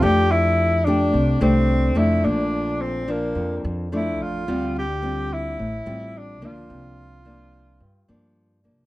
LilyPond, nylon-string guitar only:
\new Staff \with { instrumentName = "Nylon-string guitar" } { \time 4/4 \key f \major \tempo 4 = 108 << { <a d' g'>4. <a d' g'>4 <a d' g'>4 <f a d'>8~ | <f a d'>4. <f d'>4. <f a d'>4 | <g c' f'>8 r8 <g c' f'>4 r8 <g c' f'>4 <f bes d'>8~ | <f bes d'>4 <f bes d'>4 r8 <f bes d'>4 <f bes d'>8 | } \\ { f2 c2 | bes,2 f,2 | d2 a,2 | c2 g,2 | } >> }